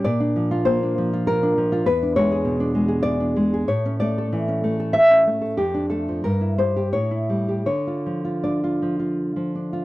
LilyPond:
\new Staff \with { instrumentName = "Nylon-string guitar" } { \time 3/4 \key d \minor \tempo 4 = 94 << { d''4 c''4 bes'4 | b'8 cis''4. d''4 | cis''8 d''4. e''4 | g'8 a'8 bes'8 c''8 cis''4 |
cis''4 d''4. r8 | } \\ { bes,16 d'16 f16 f'16 bes16 d'16 f16 f'8 d'16 f16 f'16 | e,16 d'16 gis16 gis'16 b,16 d'16 gis16 gis'8 d'16 gis16 gis'16 | a,16 cis'16 a16 a'16 e16 cis'16 a16 a'8 cis'16 a16 a'16 | f,16 d'16 a16 f16 g,16 e'16 g16 g'16 a,16 e'16 g16 g'16 |
d16 f'16 f16 f'16 d'16 f'16 f16 f'8 f16 d'16 f'16 | } >> }